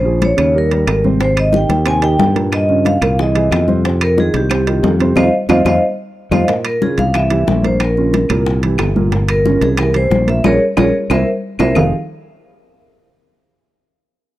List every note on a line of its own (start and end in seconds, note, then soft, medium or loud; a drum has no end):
0.00 0.32 A#1 medium
0.00 0.23 C5 medium
0.05 0.32 F3 medium
0.05 0.32 F4 medium
0.05 0.32 G#4 medium
0.05 high conga soft
0.22 0.54 C#5 medium
0.22 high conga medium
0.22 high timbale medium
0.37 0.84 D#2 medium
0.37 0.51 C#3 medium
0.37 0.51 C#4 medium
0.37 0.51 C#5 medium
0.37 high conga soft
0.37 high timbale medium
0.37 claves medium
0.55 0.68 G3 medium
0.55 0.68 G4 medium
0.55 0.69 A#4 medium
0.55 1.02 A#4 medium
0.55 high conga soft
0.71 0.98 G3 medium
0.71 0.99 G4 medium
0.71 0.99 A#4 medium
0.71 high conga soft
0.71 high timbale medium
0.87 1.64 G#1 medium
0.87 high conga soft
0.87 high timbale loud
0.87 low timbale medium
0.87 claves medium
1.04 1.18 C3 medium
1.04 1.18 C4 medium
1.04 1.18 C5 medium
1.04 high conga medium
1.20 1.47 C3 medium
1.20 1.48 C4 medium
1.20 1.48 C5 medium
1.20 1.37 C5 medium
1.20 high bongo medium
1.20 high timbale medium
1.37 1.46 D#5 medium
1.37 high conga soft
1.37 high timbale medium
1.37 claves medium
1.52 1.79 D#3 medium
1.52 1.79 D#4 medium
1.52 1.80 G4 medium
1.52 high bongo medium
1.52 high conga medium
1.56 1.89 G5 medium
1.69 2.16 D#2 medium
1.69 high bongo soft
1.69 high conga medium
1.69 high timbale medium
1.85 1.99 C3 medium
1.85 2.00 C4 medium
1.85 2.00 C5 medium
1.85 2.03 G#5 medium
1.85 high bongo medium
1.85 high conga soft
1.85 high timbale medium
1.85 claves medium
2.02 2.29 D#3 medium
2.02 2.30 D#4 medium
2.02 2.30 G4 medium
2.02 2.34 G5 loud
2.02 high bongo soft
2.02 high conga soft
2.02 high timbale medium
2.19 2.96 G2 medium
2.19 high bongo medium
2.19 low bongo medium
2.19 high conga medium
2.19 low timbale medium
2.35 2.62 A#2 medium
2.35 2.62 A#3 medium
2.35 2.63 A#4 medium
2.35 high bongo soft
2.35 high conga medium
2.35 high timbale medium
2.52 2.87 D#5 medium
2.52 high bongo medium
2.52 high timbale medium
2.52 claves medium
2.69 2.96 C#3 medium
2.69 2.96 C#4 medium
2.69 2.96 F4 medium
2.69 high bongo soft
2.69 high conga soft
2.85 3.17 F5 medium
2.85 high bongo soft
2.85 high conga medium
2.85 high timbale medium
3.01 3.48 C2 medium
3.01 3.15 A#2 medium
3.01 3.16 A#3 medium
3.01 3.16 A#4 medium
3.01 high bongo soft
3.01 high conga soft
3.01 high timbale medium
3.01 claves medium
3.19 3.32 E3 medium
3.19 3.32 E4 medium
3.19 3.33 G#4 medium
3.19 3.66 D#5 medium
3.19 high bongo medium
3.19 high conga soft
3.35 3.62 E3 medium
3.35 3.62 E4 medium
3.35 3.62 G#4 medium
3.35 high conga soft
3.35 high timbale medium
3.51 4.28 F2 medium
3.51 high bongo medium
3.51 low bongo medium
3.51 high timbale medium
3.51 claves medium
3.68 3.81 C3 medium
3.68 3.82 C4 medium
3.68 3.82 C5 medium
3.68 high bongo soft
3.68 high conga medium
3.85 4.12 C3 medium
3.85 4.12 C4 medium
3.85 4.12 C5 medium
3.85 high bongo medium
3.85 high conga soft
3.85 high timbale medium
4.01 4.10 A#4 loud
4.01 high conga soft
4.01 high timbale medium
4.01 claves medium
4.17 4.44 D#3 medium
4.17 4.45 D#4 medium
4.17 4.45 F4 medium
4.17 4.36 G#4 medium
4.17 high bongo medium
4.17 high conga medium
4.34 4.80 C2 medium
4.34 5.14 G4 medium
4.34 high bongo soft
4.34 high conga medium
4.34 high timbale medium
4.50 4.64 C3 medium
4.50 4.64 C4 medium
4.50 4.64 C5 medium
4.50 high bongo medium
4.50 high conga soft
4.50 high timbale medium
4.50 claves medium
4.67 4.94 D#3 medium
4.67 4.94 D#4 medium
4.67 4.94 F4 medium
4.67 high bongo soft
4.67 high conga soft
4.67 high timbale medium
4.83 5.14 F2 medium
4.83 high bongo medium
4.83 low bongo medium
4.83 high conga medium
4.83 low timbale medium
5.00 5.14 C3 medium
5.00 5.14 C4 medium
5.00 5.14 C5 medium
5.00 high bongo soft
5.00 high conga medium
5.00 high timbale medium
5.16 5.28 F2 loud
5.16 5.27 C4 medium
5.16 5.27 D#4 medium
5.16 5.27 F4 medium
5.16 5.27 C5 medium
5.16 5.27 D#5 medium
5.16 5.28 F5 medium
5.16 low bongo medium
5.16 high conga loud
5.16 high timbale medium
5.16 claves loud
5.49 5.61 F2 medium
5.49 5.60 C4 loud
5.49 5.60 D#4 medium
5.49 5.60 F4 loud
5.49 5.60 C5 medium
5.49 5.60 D#5 medium
5.49 5.60 F5 medium
5.49 low bongo medium
5.49 high conga medium
5.49 high timbale loud
5.49 claves loud
5.65 5.78 F2 loud
5.65 5.77 C4 medium
5.65 5.77 D#4 medium
5.65 5.77 F4 medium
5.65 5.77 C5 medium
5.65 5.77 D#5 medium
5.65 5.77 F5 medium
5.65 low bongo medium
5.65 high conga loud
5.65 high timbale medium
5.65 claves medium
6.31 6.44 F2 medium
6.31 6.42 C4 medium
6.31 6.42 D#4 medium
6.31 6.42 F4 medium
6.31 6.43 C5 medium
6.31 6.43 D#5 medium
6.31 6.43 F5 medium
6.31 low bongo medium
6.31 high conga medium
6.31 high timbale medium
6.31 claves medium
6.48 6.75 A#2 medium
6.48 6.75 A#3 medium
6.48 6.75 A#4 medium
6.48 high bongo medium
6.48 high conga soft
6.48 high timbale medium
6.65 6.82 A#4 medium
6.65 high conga soft
6.65 high timbale medium
6.65 claves medium
6.82 7.09 C#3 medium
6.82 7.09 C#4 medium
6.82 7.09 F4 medium
6.82 6.90 G#4 medium
6.82 high bongo soft
6.82 high conga medium
6.98 7.44 C2 medium
6.98 7.14 F5 loud
6.98 high bongo soft
6.98 high conga medium
6.98 high timbale medium
7.14 7.28 E3 medium
7.14 7.28 E4 medium
7.14 7.28 G4 medium
7.14 7.61 E5 medium
7.14 high bongo medium
7.14 high timbale medium
7.14 claves medium
7.30 7.58 E3 medium
7.30 7.58 E4 medium
7.30 7.58 G4 medium
7.30 high bongo soft
7.30 high conga soft
7.30 high timbale medium
7.47 8.24 A#1 medium
7.47 high bongo medium
7.47 low bongo medium
7.47 high conga medium
7.47 low timbale medium
7.63 7.90 A#2 medium
7.63 7.90 A#3 medium
7.63 7.91 A#4 medium
7.63 7.80 C5 medium
7.63 high bongo soft
7.63 high conga medium
7.63 high timbale medium
7.80 8.43 A#4 medium
7.80 high bongo medium
7.80 high conga soft
7.80 high timbale medium
7.80 claves medium
7.97 8.24 C#3 medium
7.97 8.25 C#4 medium
7.97 8.25 F4 medium
7.97 high bongo soft
7.97 high conga soft
8.14 high bongo medium
8.14 high conga medium
8.14 high timbale medium
8.29 8.76 C2 medium
8.29 8.57 A#2 medium
8.29 8.57 A#3 medium
8.29 8.57 A#4 medium
8.29 high bongo soft
8.29 high timbale medium
8.29 claves medium
8.46 high bongo medium
8.46 high conga soft
8.63 8.91 E3 medium
8.63 8.90 E4 medium
8.63 8.91 G4 medium
8.63 high conga soft
8.63 high timbale medium
8.78 9.56 G1 medium
8.78 high bongo medium
8.78 low bongo medium
8.78 high conga soft
8.78 high timbale medium
8.78 low timbale medium
8.78 claves medium
8.96 9.09 A#2 medium
8.96 9.09 A#3 medium
8.96 9.10 A#4 medium
8.96 high bongo soft
8.96 high conga medium
9.12 9.39 A#2 medium
9.12 9.39 A#3 medium
9.12 9.39 A#4 medium
9.12 high bongo medium
9.12 high timbale medium
9.28 9.63 A#4 medium
9.28 high conga soft
9.28 high timbale medium
9.28 claves medium
9.45 9.72 C#3 medium
9.45 9.73 C#4 medium
9.45 9.73 F4 medium
9.45 high bongo medium
9.45 high conga medium
9.61 10.07 C2 medium
9.61 9.77 G#4 medium
9.61 high bongo soft
9.61 high conga loud
9.61 high timbale medium
9.77 9.92 E3 medium
9.77 9.92 E4 medium
9.77 9.92 G4 medium
9.77 9.96 A#4 medium
9.77 high bongo medium
9.77 high timbale medium
9.77 claves medium
9.94 10.22 E3 medium
9.94 10.22 E4 medium
9.94 10.22 G4 medium
9.94 10.26 C5 medium
9.94 high bongo soft
9.94 high conga soft
9.94 high timbale medium
10.11 10.42 A#1 medium
10.11 high bongo medium
10.11 low bongo medium
10.11 high conga medium
10.27 10.41 A#2 medium
10.27 10.41 A#3 medium
10.27 10.41 A#4 medium
10.27 10.44 E5 medium
10.27 high bongo soft
10.27 high conga medium
10.27 high timbale medium
10.44 10.56 A#1 medium
10.44 10.55 A#3 medium
10.44 10.55 C#4 medium
10.44 10.55 F4 medium
10.44 10.56 G#4 medium
10.44 10.56 A#4 medium
10.44 10.56 C#5 medium
10.44 high bongo medium
10.44 high conga medium
10.44 high timbale medium
10.44 claves medium
10.77 10.90 A#1 loud
10.77 10.88 A#3 loud
10.77 10.88 C#4 loud
10.77 10.88 F4 medium
10.77 10.89 G#4 medium
10.77 10.88 A#4 medium
10.77 10.89 C#5 medium
10.77 high bongo medium
10.77 high conga medium
10.77 high timbale loud
10.77 claves medium
11.10 11.22 C2 medium
11.10 11.21 A#3 medium
11.10 11.21 C4 medium
11.10 11.21 E4 medium
11.10 11.21 A#4 medium
11.10 11.22 C5 medium
11.10 11.22 E5 medium
11.10 high bongo loud
11.10 high conga medium
11.10 high timbale medium
11.10 claves loud
11.59 11.72 C2 medium
11.59 11.71 A#3 medium
11.59 11.70 C4 medium
11.59 11.70 E4 medium
11.59 11.71 A#4 medium
11.59 11.70 C5 medium
11.59 11.71 E5 medium
11.59 high bongo medium
11.59 high conga medium
11.59 high timbale medium
11.59 claves medium
11.75 11.91 F1 medium
11.75 11.91 F3 medium
11.75 11.91 C4 medium
11.75 11.91 D#4 medium
11.75 11.91 F4 medium
11.75 11.92 G4 medium
11.75 11.92 G#4 medium
11.75 11.92 F5 medium
11.75 low bongo medium
11.75 low conga medium
11.75 low timbale medium
11.75 claves medium